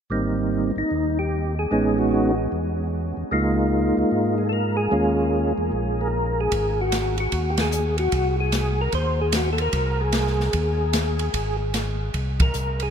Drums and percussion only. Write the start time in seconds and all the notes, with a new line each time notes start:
6.52 kick, ride
6.92 snare, hi-hat pedal, ride
7.18 ride
7.32 kick, ride
7.57 snare, ride
7.72 hi-hat pedal
7.98 ride
8.12 kick, ride
8.52 snare, hi-hat pedal, ride
8.92 kick, ride
9.32 snare, hi-hat pedal, ride
9.58 ride
9.73 kick, ride
10.12 snare, hi-hat pedal, ride
10.27 snare
10.40 snare
10.53 kick, ride
10.93 snare, hi-hat pedal, ride
11.19 ride
11.34 kick, ride
11.74 snare, hi-hat pedal, ride
12.14 kick, ride
12.40 kick, ride
12.54 hi-hat pedal
12.80 ride